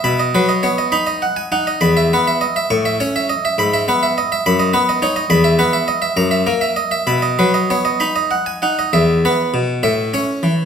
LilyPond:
<<
  \new Staff \with { instrumentName = "Harpsichord" } { \time 6/8 \key b \mixolydian \tempo 4. = 68 b''16 dis''16 b'16 dis''16 cis''16 dis''16 b''16 dis''16 fis''16 gis''16 fis''16 dis''16 | b''16 e''16 b'16 e''16 dis''16 e''16 cis'''16 e''16 cis''16 e''16 dis''16 e''16 | b''16 e''16 b'16 e''16 dis''16 e''16 b''16 dis''16 b'16 dis''16 cis''16 dis''16 | \key b \major b''16 e''16 b'16 e''16 dis''16 e''16 ais''16 e''16 ais'16 e''16 dis''16 e''16 |
b''16 dis''16 b'16 dis''16 cis''16 dis''16 b''16 dis''16 fis''16 gis''16 fis''16 dis''16 | \key a \lydian e''8 b'8 b,8 e''8 cis''8 e8 | }
  \new Staff \with { instrumentName = "Harpsichord" } { \time 6/8 \key b \mixolydian b,8 fis8 b8 dis'8 r8 dis'8 | e,8 b8 r8 a,8 cis'8 r8 | gis,8 b8 r8 fis,8 b8 dis'8 | \key b \major e,8 b8 r8 fis,8 ais8 r8 |
b,8 fis8 b8 dis'8 r8 dis'8 | \key a \lydian e,8 b8 r8 a,8 cis'8 r8 | }
>>